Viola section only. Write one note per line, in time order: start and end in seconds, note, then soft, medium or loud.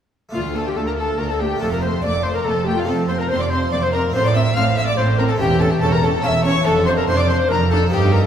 0.33 0.41 A3 medium
0.55 0.63 A3 medium
0.77 0.85 A3 medium
0.98 1.06 A3 medium
1.19 1.27 A3 medium
1.40 1.48 A3 medium
1.61 1.69 A3 medium
1.83 1.91 A3 medium
2.04 2.12 A3 medium
2.24 2.32 A3 medium
2.46 2.54 A3 medium
2.67 2.75 A3 medium
2.88 2.96 C4 medium
3.09 3.17 C4 medium
3.31 3.39 C4 medium
3.52 3.60 C4 medium
3.73 3.81 C4 medium
3.94 4.02 C4 medium
4.15 4.23 C4 medium
4.35 4.43 C4 medium
4.57 4.65 C4 medium
4.78 4.86 C4 medium
4.98 5.06 C4 medium
5.19 5.27 C4 medium
5.39 5.47 C#4 medium
5.61 5.69 C#4 medium
5.82 5.90 C#4 medium
6.03 6.11 C#4 medium
6.24 6.32 C#4 medium
6.45 6.53 C#4 medium
6.66 6.74 D4 medium
6.87 6.95 D4 medium
7.08 7.16 D4 medium
7.28 7.36 D4 medium
7.50 7.58 D4 medium
7.71 7.79 D4 medium
7.93 8.26 D#4 medium